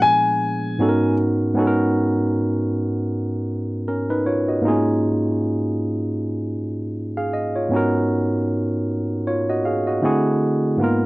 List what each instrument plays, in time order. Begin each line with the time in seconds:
Already playing: tine electric piano A#2 F3 G#3 B3 D4 G#4
0.02 grand piano G#5
0.79 tine electric piano G#2 B3 C#4 D#4 F#4 A4
0.89 tine electric piano A#4
1.54 tine electric piano G#2 B3 C#4 D#4
1.59 tine electric piano F#4 A4
1.67 tine electric piano A#4
3.88 tine electric piano C#4 A#4
4.10 tine electric piano D#4 B4
4.26 tine electric piano F4 C#5
4.48 tine electric piano F#4 D#5
4.61 tine electric piano G#2 A#3 B3 D#4
4.66 tine electric piano F4 G#4
4.70 tine electric piano C#4
7.17 tine electric piano G#4 F5
7.33 tine electric piano D#5
7.56 tine electric piano F4 C#5
7.69 tine electric piano G#2 B3 C#4
7.73 tine electric piano D#4 F#4 A#4
9.27 tine electric piano F4 C#5
9.49 tine electric piano F#4 D#5
9.65 tine electric piano G#4 F5
9.87 tine electric piano F#4 D#5
10.02 tine electric piano D3 A3 C4 E4 F#4 G#4
10.77 tine electric piano G#2 A#3 B3 D#4
10.82 tine electric piano F4 A#4